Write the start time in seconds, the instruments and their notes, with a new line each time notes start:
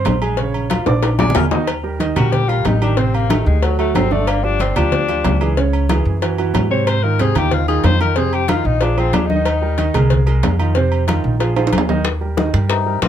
Already playing: grand piano C4 C5 C6
0.05 upright bass A#1, cowbell, high conga, low timbale, low agogo
0.22 grand piano G#3 G#4 G#5, low agogo
0.37 grand piano C#3 C#4 C#5, cowbell, high conga
0.54 high conga, low agogo
0.70 grand piano F3 F4 F5, cowbell, high conga, low timbale, low agogo
0.86 upright bass A#1, grand piano D4 D5 D6, high bongo, high conga, high timbale
1.03 cowbell, high bongo, high conga, high timbale, low agogo
1.19 grand piano G#3 G#4 G#5, melodica D5, low bongo, high conga, low timbale, low agogo
1.30 low conga
1.35 upright bass D#2, melodica A#4, cowbell, low bongo, low timbale, low agogo
1.41 low conga
1.51 grand piano D#3 D#4 D#5, low bongo, low conga, low timbale
1.67 cowbell, high conga, low agogo
1.83 grand piano G3 G4 A#4, high conga
1.99 grand piano D#3 D#4 D#5, cowbell, high conga, low timbale, low agogo
2.16 upright bass A#1, grand piano G3 G4 A#4, tenor saxophone F#4, cowbell, low conga, low agogo
2.32 tenor saxophone G4, cowbell, high conga, low conga
2.48 grand piano G3 G4 A#4, tenor saxophone F4, high conga, low agogo
2.65 upright bass A1, tenor saxophone D#4, cowbell, high conga, low timbale, low agogo
2.82 grand piano D#3 D#4 G4, tenor saxophone D4, low agogo
2.97 grand piano C3 C4 C5, tenor saxophone C4, cowbell, high conga
3.14 tenor saxophone A#3, high conga, low agogo
3.29 grand piano D#3 D#4 G4, tenor saxophone A3, cowbell, high conga, low timbale, low agogo
3.46 upright bass D2, tenor saxophone G#3, high conga
3.62 grand piano F#3 F#4 A4, tenor saxophone F#3, cowbell, high conga, low agogo
3.79 grand piano F#3 F#4 A4, tenor saxophone A3, high conga, low agogo
3.95 upright bass G1, tenor saxophone C4, cowbell, high conga, low timbale, low agogo
4.11 grand piano D3 D4 D5, tenor saxophone A3, high conga
4.27 tenor saxophone A#3, cowbell, high conga, low agogo
4.43 grand piano F3 F4 G4, tenor saxophone D4, high conga
4.59 grand piano D3 D4 D5, tenor saxophone C4, cowbell, high conga, low timbale, low agogo
4.76 upright bass D2, grand piano F3 F4 G4, tenor saxophone D4, cowbell, low conga, low agogo
4.92 cowbell, high conga, low conga
5.09 grand piano F3 F4 G4, high conga, low agogo
5.24 upright bass C#2, cowbell, high conga, low timbale, low agogo
5.40 grand piano E3 E4 G#4, low agogo
5.57 grand piano C#3 C#4 C#5, cowbell, high conga
5.73 high conga, low agogo
5.89 grand piano E3 E4 G#4, cowbell, high conga, low timbale, low agogo
6.05 upright bass F#2, high conga
6.21 grand piano E3 E4 F#4, cowbell, high conga, low agogo
6.38 grand piano E3 E4 F#4, high conga, low agogo
6.54 upright bass G#2, cowbell, high conga, low timbale, low agogo
6.70 grand piano C3 C4 C5, tenor saxophone C#5
6.87 tenor saxophone C5, cowbell, high conga, low agogo
7.03 grand piano D#3 D#4 F4, tenor saxophone A#4, high conga
7.19 grand piano C3 C4 C5, tenor saxophone G#4, cowbell, high conga, low timbale, low agogo
7.35 upright bass D#2, grand piano D#3 D#4 F4, tenor saxophone G4, cowbell, low conga, low agogo
7.51 tenor saxophone F4, cowbell, high conga, low conga
7.68 grand piano D#3 D#4 F4, tenor saxophone G#4, high conga, low agogo
7.84 upright bass F2, tenor saxophone C5, cowbell, high conga, low timbale, low agogo
8.00 grand piano D#3 D#4 F4, tenor saxophone A#4, low agogo
8.16 grand piano C3 C4 C5, tenor saxophone G#4, cowbell, high conga
8.33 tenor saxophone G4, high conga, low agogo
8.48 grand piano D#3 D#4 F4, tenor saxophone F4, cowbell, high conga, low timbale, low agogo
8.65 upright bass A#1, tenor saxophone D#4, high conga
8.81 grand piano F3 F4 G#4, tenor saxophone D4, cowbell, high conga, low agogo
8.97 grand piano F3 F4 G#4, tenor saxophone C4, high conga, low agogo
9.13 upright bass D#2, tenor saxophone D4, cowbell, high conga, low timbale, low agogo
9.26 grand piano D#3 D#4 D#5, tenor saxophone D#4, high conga
9.36 tenor saxophone D#4
9.45 cowbell, high conga, low agogo
9.62 grand piano G3 G4 A#4, high conga
9.78 grand piano D#3 D#4 D#5, cowbell, high conga, low timbale, low agogo
9.94 upright bass C2, grand piano G#3 G#4 A#4, cowbell, low conga, low agogo
10.10 cowbell, high conga, low conga
10.26 grand piano G#3 G#4 A#4, high conga, low agogo
10.43 upright bass F2, cowbell, high conga, low timbale, low agogo
10.59 grand piano D#3 D#4 F4, low agogo
10.75 grand piano C3 C4 C5, cowbell, high conga
10.92 high conga, low agogo
11.07 grand piano D#3 D#4 F4, cowbell, high conga, low timbale, low agogo
11.24 upright bass A#1, high conga
11.40 grand piano F3 F4 G#4, cowbell, high conga, low agogo
11.56 grand piano F3 F4 G#4, high conga, high timbale, low agogo
11.67 high timbale
11.73 upright bass D#2, cowbell, high conga, low agogo
11.78 low timbale
11.89 grand piano D#3 D#4 D#5, high conga, low timbale
12.05 high bongo, high conga, high timbale
12.21 grand piano G3 G4 A#4, high conga
12.37 grand piano D#3 D#4 D#5, high bongo, high conga, high timbale
12.53 upright bass G2, grand piano G3 G4 A#4, high conga, high timbale
12.69 tenor saxophone C3, melodica D#4, high bongo, high conga, high timbale
12.86 grand piano G3 G4 A#4, high conga
13.02 upright bass A2, tenor saxophone C3, melodica F4, high bongo, low bongo, high conga, high timbale